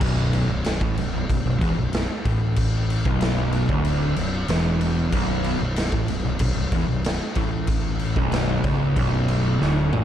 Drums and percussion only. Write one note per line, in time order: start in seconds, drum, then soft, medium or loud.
0.01 kick loud
0.01 crash loud
0.01 crash medium
0.33 crash medium
0.64 snare loud
0.64 crash medium
0.81 kick loud
0.97 crash medium
1.30 kick medium
1.30 crash medium
1.61 kick loud
1.61 crash medium
1.93 snare loud
1.93 crash medium
2.25 kick loud
2.25 crash medium
2.56 kick loud
2.56 crash medium
2.90 crash medium
3.05 kick loud
3.21 snare loud
3.21 crash medium
3.52 crash medium
3.69 kick loud
3.85 crash medium
4.16 crash medium
4.48 snare loud
4.48 crash medium
4.81 crash medium
5.12 kick loud
5.12 crash medium
5.44 crash medium
5.76 snare loud
5.76 crash medium
5.92 kick loud
6.08 crash medium
6.39 kick loud
6.39 crash medium
6.72 kick loud
6.72 crash medium
7.04 snare loud
7.04 crash medium
7.35 kick loud
7.35 crash medium
7.67 kick loud
7.67 crash medium
7.99 crash medium
8.16 kick loud
8.32 snare loud
8.32 crash medium
8.64 kick loud
8.64 crash medium
8.96 kick loud
8.96 crash medium
9.28 crash medium
9.62 snare medium
9.93 mid tom loud